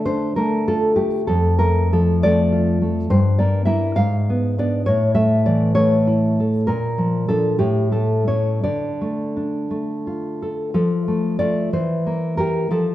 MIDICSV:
0, 0, Header, 1, 2, 480
1, 0, Start_track
1, 0, Key_signature, -1, "minor"
1, 0, Tempo, 594648
1, 1013, Time_signature, 6, 3, 24, 8
1, 1013, Tempo, 638978
1, 1973, Tempo, 587659
1, 4373, Tempo, 614754
1, 5813, Tempo, 632244
1, 6293, Tempo, 705882
1, 8213, Tempo, 641026
1, 9843, End_track
2, 0, Start_track
2, 0, Title_t, "Nylon-string guitar"
2, 0, Program_c, 0, 24
2, 0, Note_on_c, 0, 50, 47
2, 0, Note_on_c, 0, 57, 38
2, 44, Note_on_c, 0, 72, 60
2, 50, Note_on_c, 0, 62, 35
2, 276, Note_off_c, 0, 72, 0
2, 287, Note_off_c, 0, 57, 0
2, 291, Note_on_c, 0, 70, 56
2, 296, Note_on_c, 0, 57, 40
2, 520, Note_off_c, 0, 70, 0
2, 546, Note_on_c, 0, 65, 37
2, 547, Note_on_c, 0, 69, 58
2, 768, Note_off_c, 0, 62, 0
2, 769, Note_off_c, 0, 69, 0
2, 772, Note_off_c, 0, 57, 0
2, 773, Note_on_c, 0, 67, 56
2, 781, Note_on_c, 0, 57, 36
2, 979, Note_off_c, 0, 50, 0
2, 1005, Note_off_c, 0, 67, 0
2, 1018, Note_off_c, 0, 57, 0
2, 1021, Note_off_c, 0, 65, 0
2, 1026, Note_on_c, 0, 69, 58
2, 1035, Note_on_c, 0, 41, 46
2, 1250, Note_off_c, 0, 69, 0
2, 1262, Note_on_c, 0, 70, 59
2, 1265, Note_on_c, 0, 57, 38
2, 1500, Note_off_c, 0, 70, 0
2, 1519, Note_on_c, 0, 69, 59
2, 1522, Note_on_c, 0, 53, 37
2, 1746, Note_off_c, 0, 69, 0
2, 1747, Note_on_c, 0, 74, 71
2, 1749, Note_off_c, 0, 57, 0
2, 1758, Note_on_c, 0, 57, 38
2, 1965, Note_on_c, 0, 65, 39
2, 2196, Note_off_c, 0, 57, 0
2, 2206, Note_on_c, 0, 57, 37
2, 2218, Note_off_c, 0, 53, 0
2, 2413, Note_off_c, 0, 74, 0
2, 2422, Note_off_c, 0, 41, 0
2, 2437, Note_on_c, 0, 43, 55
2, 2438, Note_off_c, 0, 65, 0
2, 2439, Note_on_c, 0, 72, 71
2, 2441, Note_off_c, 0, 57, 0
2, 2664, Note_off_c, 0, 72, 0
2, 2669, Note_on_c, 0, 74, 56
2, 2678, Note_on_c, 0, 58, 39
2, 2885, Note_off_c, 0, 74, 0
2, 2888, Note_off_c, 0, 58, 0
2, 2889, Note_on_c, 0, 76, 66
2, 2897, Note_on_c, 0, 58, 36
2, 2901, Note_on_c, 0, 64, 44
2, 3126, Note_off_c, 0, 58, 0
2, 3127, Note_off_c, 0, 64, 0
2, 3136, Note_off_c, 0, 43, 0
2, 3137, Note_off_c, 0, 76, 0
2, 3138, Note_on_c, 0, 77, 72
2, 3143, Note_on_c, 0, 44, 51
2, 3413, Note_on_c, 0, 59, 37
2, 3619, Note_off_c, 0, 77, 0
2, 3641, Note_off_c, 0, 59, 0
2, 3648, Note_on_c, 0, 62, 40
2, 3652, Note_on_c, 0, 59, 36
2, 3655, Note_on_c, 0, 74, 63
2, 3857, Note_off_c, 0, 44, 0
2, 3864, Note_off_c, 0, 59, 0
2, 3864, Note_off_c, 0, 62, 0
2, 3871, Note_off_c, 0, 74, 0
2, 3874, Note_on_c, 0, 73, 68
2, 3888, Note_on_c, 0, 45, 53
2, 4104, Note_off_c, 0, 73, 0
2, 4108, Note_on_c, 0, 57, 41
2, 4108, Note_on_c, 0, 76, 68
2, 4353, Note_off_c, 0, 76, 0
2, 4362, Note_on_c, 0, 74, 68
2, 4373, Note_on_c, 0, 52, 36
2, 4585, Note_off_c, 0, 57, 0
2, 4586, Note_off_c, 0, 74, 0
2, 4589, Note_on_c, 0, 73, 76
2, 4595, Note_on_c, 0, 57, 44
2, 4842, Note_on_c, 0, 64, 43
2, 5088, Note_off_c, 0, 52, 0
2, 5097, Note_on_c, 0, 69, 41
2, 5289, Note_off_c, 0, 73, 0
2, 5298, Note_off_c, 0, 45, 0
2, 5309, Note_on_c, 0, 70, 66
2, 5317, Note_on_c, 0, 46, 51
2, 5320, Note_off_c, 0, 57, 0
2, 5325, Note_off_c, 0, 64, 0
2, 5333, Note_off_c, 0, 69, 0
2, 5552, Note_on_c, 0, 53, 38
2, 5784, Note_off_c, 0, 70, 0
2, 5785, Note_off_c, 0, 53, 0
2, 5789, Note_on_c, 0, 69, 60
2, 5794, Note_on_c, 0, 53, 36
2, 5795, Note_on_c, 0, 62, 38
2, 6016, Note_off_c, 0, 53, 0
2, 6016, Note_off_c, 0, 62, 0
2, 6016, Note_off_c, 0, 69, 0
2, 6019, Note_on_c, 0, 67, 62
2, 6022, Note_off_c, 0, 46, 0
2, 6024, Note_on_c, 0, 45, 51
2, 6268, Note_off_c, 0, 67, 0
2, 6271, Note_on_c, 0, 57, 38
2, 6274, Note_on_c, 0, 69, 57
2, 6506, Note_off_c, 0, 69, 0
2, 6509, Note_off_c, 0, 57, 0
2, 6516, Note_on_c, 0, 61, 36
2, 6516, Note_on_c, 0, 73, 61
2, 6517, Note_on_c, 0, 57, 33
2, 6737, Note_off_c, 0, 45, 0
2, 6741, Note_off_c, 0, 57, 0
2, 6741, Note_off_c, 0, 61, 0
2, 6754, Note_off_c, 0, 73, 0
2, 6761, Note_on_c, 0, 50, 46
2, 6761, Note_on_c, 0, 74, 59
2, 7018, Note_on_c, 0, 57, 34
2, 7257, Note_on_c, 0, 62, 33
2, 7468, Note_off_c, 0, 74, 0
2, 7480, Note_off_c, 0, 57, 0
2, 7488, Note_on_c, 0, 57, 37
2, 7735, Note_on_c, 0, 65, 33
2, 7973, Note_off_c, 0, 62, 0
2, 7976, Note_on_c, 0, 69, 34
2, 8182, Note_off_c, 0, 50, 0
2, 8186, Note_off_c, 0, 69, 0
2, 8192, Note_on_c, 0, 53, 46
2, 8195, Note_on_c, 0, 69, 59
2, 8208, Note_off_c, 0, 57, 0
2, 8212, Note_off_c, 0, 65, 0
2, 8443, Note_on_c, 0, 57, 37
2, 8672, Note_off_c, 0, 57, 0
2, 8674, Note_off_c, 0, 69, 0
2, 8675, Note_on_c, 0, 74, 60
2, 8681, Note_on_c, 0, 57, 36
2, 8689, Note_on_c, 0, 65, 37
2, 8909, Note_off_c, 0, 57, 0
2, 8913, Note_off_c, 0, 53, 0
2, 8914, Note_off_c, 0, 65, 0
2, 8921, Note_off_c, 0, 74, 0
2, 8931, Note_on_c, 0, 52, 47
2, 8932, Note_on_c, 0, 72, 52
2, 9181, Note_on_c, 0, 58, 37
2, 9393, Note_off_c, 0, 72, 0
2, 9412, Note_off_c, 0, 58, 0
2, 9413, Note_on_c, 0, 70, 57
2, 9421, Note_on_c, 0, 58, 31
2, 9430, Note_on_c, 0, 67, 40
2, 9627, Note_off_c, 0, 52, 0
2, 9633, Note_off_c, 0, 58, 0
2, 9638, Note_off_c, 0, 67, 0
2, 9643, Note_off_c, 0, 70, 0
2, 9662, Note_on_c, 0, 53, 49
2, 9667, Note_on_c, 0, 69, 57
2, 9843, Note_off_c, 0, 53, 0
2, 9843, Note_off_c, 0, 69, 0
2, 9843, End_track
0, 0, End_of_file